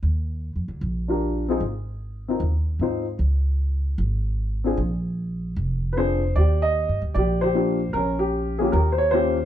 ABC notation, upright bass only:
X:1
M:4/4
L:1/8
Q:"Swing" 1/4=152
K:Eb
V:1 name="Upright bass" clef=bass
E,,2- (3E,, F,, D,, B,,,4 | A,,,4 E,,2 A,,2 | _D,,4 A,,,4 | B,,,4 F,,,4 |
E,,2- (3E,, G,, D,, B,,,4 | B,,,4 E,,4 |]